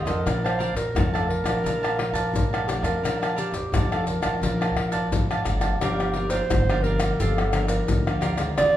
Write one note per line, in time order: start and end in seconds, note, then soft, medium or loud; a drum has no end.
0.00 0.23 C3 medium
0.05 0.22 F2 medium
0.05 0.71 F3 medium
0.05 0.72 D4 medium
0.05 0.24 A4 medium
0.05 0.46 A#4 medium
0.05 0.24 C5 medium
0.05 0.23 D#5 medium
0.05 pandeiro medium
0.05 tamborim medium
0.05 maracas medium
0.05 surdo soft
0.26 0.70 A#1 medium
0.26 0.92 A#2 medium
0.26 0.42 A#4 medium
0.26 0.42 D5 medium
0.26 0.43 F5 medium
0.26 0.43 A5 medium
0.26 pandeiro medium
0.26 tamborim medium
0.26 maracas medium
0.26 surdo medium
0.44 0.75 C5 medium
0.44 0.59 D5 medium
0.44 0.59 F5 medium
0.44 0.60 A5 medium
0.44 pandeiro soft
0.44 tamborim medium
0.44 maracas soft
0.59 0.74 A#4 medium
0.59 0.75 D5 medium
0.59 0.75 F5 medium
0.59 0.75 A5 medium
0.59 pandeiro medium
0.75 0.91 F2 medium
0.75 1.16 A#4 loud
0.75 muted cavaquinho stroke soft
0.75 pandeiro medium
0.75 maracas medium
0.75 surdo soft
0.95 1.39 F2 medium
0.95 1.62 F2 soft
0.95 1.43 F3 medium
0.95 1.43 A3 medium
0.95 1.43 D4 medium
0.95 1.12 A#4 soft
0.95 1.12 D5 medium
0.95 1.12 F5 medium
0.95 1.12 A5 medium
0.95 pandeiro medium
0.95 tamborim medium
0.95 maracas medium
0.95 surdo loud
1.14 1.28 A4 medium
1.14 1.45 D5 medium
1.14 1.44 F5 medium
1.14 1.43 A5 medium
1.14 pandeiro soft
1.14 tamborim medium
1.14 maracas soft
1.29 2.69 A#4 loud
1.29 pandeiro medium
1.44 1.60 A#1 medium
1.44 1.93 F3 medium
1.44 1.93 D4 medium
1.44 1.63 D5 medium
1.44 1.62 F5 medium
1.44 1.62 A5 medium
1.44 pandeiro medium
1.44 tamborim medium
1.44 maracas medium
1.44 surdo soft
1.64 2.09 A#1 medium
1.64 2.31 A#2 medium
1.64 1.81 A#4 soft
1.64 1.81 D5 medium
1.64 1.81 F5 soft
1.64 1.81 A5 soft
1.64 pandeiro medium
1.64 maracas medium
1.64 surdo medium
1.83 1.97 D5 medium
1.83 1.97 F5 medium
1.83 1.97 A5 medium
1.83 pandeiro soft
1.83 tamborim medium
1.83 maracas soft
1.98 2.44 F3 medium
1.98 2.44 D4 medium
1.98 muted cavaquinho stroke soft
1.98 pandeiro medium
1.98 tamborim medium
2.13 2.30 F2 medium
2.13 2.50 D5 medium
2.13 2.49 F5 medium
2.13 2.49 A5 medium
2.13 pandeiro medium
2.13 maracas medium
2.13 surdo soft
2.34 2.78 A#1 loud
2.34 3.01 F2 medium
2.34 pandeiro medium
2.34 maracas medium
2.34 surdo medium
2.53 2.67 D5 medium
2.53 2.68 F5 medium
2.53 2.68 A5 medium
2.53 pandeiro soft
2.53 tamborim medium
2.53 maracas soft
2.68 2.98 F3 medium
2.68 2.98 A3 medium
2.68 2.98 D4 medium
2.68 2.84 G4 medium
2.68 2.84 A#4 medium
2.68 2.84 D5 soft
2.68 2.83 F5 medium
2.68 2.82 A5 medium
2.68 pandeiro medium
2.68 tamborim medium
2.68 maracas medium
2.83 2.99 F2 medium
2.83 3.40 A#4 medium
2.83 3.02 D5 medium
2.83 3.01 F5 medium
2.83 3.01 A5 medium
2.83 pandeiro medium
2.83 tamborim medium
2.83 maracas medium
2.83 surdo soft
3.03 3.47 A#1 medium
3.03 3.70 A#2 medium
3.03 3.49 F3 medium
3.03 3.49 D4 medium
3.03 3.20 A#4 soft
3.03 3.20 D5 medium
3.03 3.20 F5 soft
3.03 3.21 A5 medium
3.03 pandeiro medium
3.03 tamborim medium
3.03 maracas medium
3.03 surdo medium
3.22 3.36 D5 medium
3.22 3.37 F5 medium
3.22 3.37 A5 medium
3.22 pandeiro soft
3.22 tamborim medium
3.22 maracas soft
3.36 3.95 G4 medium
3.36 3.52 A#4 medium
3.36 3.53 D5 medium
3.36 3.53 F5 medium
3.36 3.53 A5 medium
3.36 pandeiro medium
3.36 maracas medium
3.52 3.69 F2 medium
3.52 muted cavaquinho stroke soft
3.52 pandeiro medium
3.52 maracas medium
3.52 surdo soft
3.72 4.17 F2 medium
3.72 4.39 F2 medium
3.72 4.20 F3 medium
3.72 4.20 A3 soft
3.72 4.20 D4 medium
3.72 3.89 A#4 soft
3.72 3.90 D5 medium
3.72 3.90 F5 soft
3.72 3.90 A5 medium
3.72 pandeiro medium
3.72 tamborim medium
3.72 maracas medium
3.72 surdo loud
3.92 4.08 A4 medium
3.92 4.23 D5 medium
3.92 4.22 F5 medium
3.92 4.21 A5 medium
3.92 pandeiro soft
3.92 tamborim medium
3.92 maracas soft
4.07 5.43 A#4 medium
4.07 pandeiro medium
4.07 maracas medium
4.21 4.38 A#1 medium
4.21 4.70 F3 medium
4.21 4.70 D4 medium
4.21 4.41 D5 medium
4.21 4.40 F5 medium
4.21 4.40 A5 medium
4.21 pandeiro medium
4.21 tamborim medium
4.21 maracas medium
4.21 surdo soft
4.41 4.71 A#1 loud
4.41 5.09 A#2 medium
4.41 4.59 A#4 soft
4.41 4.59 D5 soft
4.41 4.59 F5 soft
4.41 4.60 A5 soft
4.41 pandeiro medium
4.41 maracas medium
4.41 surdo medium
4.61 4.76 D5 soft
4.61 4.76 F5 medium
4.61 4.76 A5 medium
4.61 pandeiro soft
4.61 tamborim medium
4.61 maracas soft
4.75 5.07 A#1 medium
4.75 5.21 F3 medium
4.75 5.22 D4 medium
4.75 muted cavaquinho stroke soft
4.75 pandeiro medium
4.75 tamborim medium
4.75 surdo soft
4.92 5.28 D5 medium
4.92 5.27 F5 medium
4.92 5.27 A5 medium
4.92 pandeiro medium
4.92 maracas medium
4.92 surdo soft
5.12 5.43 A1 medium
5.12 5.78 F2 medium
5.12 pandeiro medium
5.12 maracas medium
5.12 surdo loud
5.30 5.44 D5 medium
5.30 5.45 F5 medium
5.30 5.46 A5 medium
5.30 pandeiro soft
5.30 tamborim medium
5.30 maracas soft
5.44 5.77 G1 medium
5.44 5.75 F3 medium
5.44 5.75 A3 medium
5.44 5.75 D4 medium
5.44 5.62 A#4 soft
5.44 5.62 D5 soft
5.44 5.61 F5 soft
5.44 5.60 A5 soft
5.44 pandeiro medium
5.44 tamborim medium
5.44 maracas medium
5.61 5.80 D5 soft
5.61 5.79 F5 medium
5.61 5.78 A5 medium
5.61 pandeiro medium
5.61 tamborim medium
5.61 maracas medium
5.61 surdo soft
5.81 6.40 G1 medium
5.81 6.47 G2 medium
5.81 6.11 F3 soft
5.81 6.11 A#3 medium
5.81 6.11 D4 medium
5.81 6.14 G4 medium
5.81 6.32 G4 loud
5.81 6.14 A#4 medium
5.81 6.15 D5 medium
5.81 6.16 F5 medium
5.81 pandeiro medium
5.81 tamborim medium
5.81 maracas medium
5.81 surdo medium
6.00 pandeiro soft
6.00 tamborim medium
6.00 maracas soft
6.14 6.62 F3 medium
6.14 6.62 A#3 medium
6.14 6.62 D4 medium
6.14 6.29 G4 soft
6.14 6.30 A#4 medium
6.14 6.30 D5 medium
6.14 6.31 F5 soft
6.14 pandeiro medium
6.30 6.41 G4 medium
6.30 6.41 A#4 medium
6.30 6.85 C5 loud
6.30 6.41 D5 medium
6.30 6.42 F5 medium
6.30 pandeiro medium
6.30 maracas medium
6.30 surdo soft
6.50 7.10 G1 loud
6.50 7.17 D3 medium
6.50 pandeiro medium
6.50 tamborim medium
6.50 maracas medium
6.50 surdo loud
6.69 7.15 F3 medium
6.69 7.15 A#3 medium
6.69 7.15 D4 medium
6.69 6.78 G4 medium
6.69 6.78 A#4 medium
6.69 6.78 D5 medium
6.69 6.78 F5 medium
6.69 pandeiro soft
6.69 tamborim medium
6.69 maracas soft
6.83 7.01 G4 medium
6.83 7.21 A#4 medium
6.83 7.01 A#4 medium
6.83 6.99 D5 medium
6.83 6.98 F5 medium
6.83 pandeiro medium
7.00 7.18 A#4 soft
7.00 7.18 D5 soft
7.00 7.17 F5 medium
7.00 pandeiro medium
7.00 tamborim medium
7.00 maracas medium
7.00 surdo soft
7.20 7.79 G1 loud
7.20 7.86 G2 medium
7.20 7.41 F3 medium
7.20 7.41 A#3 medium
7.20 7.41 D4 medium
7.20 7.52 G4 medium
7.20 7.68 A4 medium
7.20 7.53 D5 medium
7.20 7.54 F5 medium
7.20 pandeiro medium
7.20 maracas medium
7.20 surdo soft
7.38 pandeiro soft
7.38 tamborim medium
7.38 maracas soft
7.53 8.00 F3 medium
7.53 8.01 A#3 medium
7.53 8.01 D4 medium
7.53 7.70 G4 soft
7.53 7.69 A#4 soft
7.53 7.68 D5 soft
7.53 7.67 F5 medium
7.53 pandeiro medium
7.53 tamborim medium
7.53 maracas medium
7.68 8.19 A#4 medium
7.68 8.04 A#4 soft
7.68 8.04 D5 soft
7.68 8.04 F5 medium
7.68 pandeiro medium
7.68 maracas medium
7.68 surdo soft
7.88 8.48 D2 medium
7.88 8.55 D3 medium
7.88 pandeiro medium
7.88 maracas medium
7.88 surdo loud
8.07 8.36 F3 medium
8.07 8.36 A#3 medium
8.07 8.37 D4 medium
8.07 8.20 A#4 soft
8.07 8.21 D5 soft
8.07 8.22 F5 medium
8.07 pandeiro soft
8.07 tamborim medium
8.07 maracas soft
8.21 8.38 G4 medium
8.21 8.39 A#4 medium
8.21 8.38 D5 medium
8.21 8.36 F5 medium
8.21 pandeiro medium
8.21 tamborim medium
8.21 maracas medium
8.38 8.77 D#3 medium
8.38 8.77 G#3 medium
8.38 8.77 C4 medium
8.38 8.56 A#4 soft
8.38 8.56 D5 soft
8.38 8.55 F5 soft
8.38 pandeiro medium
8.38 tamborim medium
8.38 maracas medium
8.38 surdo soft
8.57 8.77 F1 medium
8.57 8.77 F2 medium
8.57 8.77 F4 medium
8.57 8.77 G#4 medium
8.57 8.77 C5 medium
8.57 8.77 D5 loud
8.57 pandeiro medium
8.57 tamborim medium
8.57 maracas medium
8.57 surdo medium